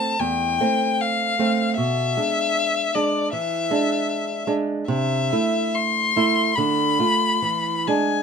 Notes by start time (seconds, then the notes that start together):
Already playing: A3 C4 A5
0.19 E2 G5
0.60 A3 C4
1.00 F5
1.39 A3 C4
1.77 B2 E5
2.17 G#3 D4
2.94 G#3 D4 D5
3.33 E3 E5
3.71 G#3 D4
4.47 G#3 D4
4.88 C3 E5
5.32 A3 E4
5.75 C6
6.16 A3 E4
6.55 D3 B5
6.99 A3 F4
7.42 E3
7.87 G#3 D4 G#5